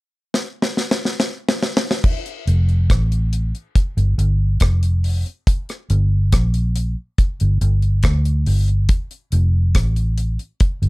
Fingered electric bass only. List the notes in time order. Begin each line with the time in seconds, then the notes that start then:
2.47 F1
2.90 A1
3.97 G1
4.18 G1
4.61 F1
5.90 G1
6.33 A#1
7.41 G1
7.61 G1
8.04 D2
8.47 G1
9.32 F1
9.75 A1
10.82 G1